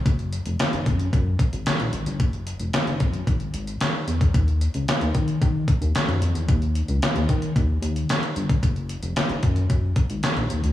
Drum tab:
HH |xxxxxxxxx-xxxxxx|xxxxxxxxxxxxx-xx|xxxxxxxxx-xxxxxx|xxxxxxxxx-xxxxxx|
CP |----x-------x---|----x-------x---|----x-------x---|----x-------x---|
SD |----o-------o---|----o-------o---|----o-------o---|----o-------o---|
BD |o-----o-o-o-----|o-----o-o------o|o-----o-o-o-----|o-----o-o------o|

HH |xxxxxxxxx-xxxxxx|
CP |----x-------x---|
SD |----o-------o---|
BD |o-----o-o-o-----|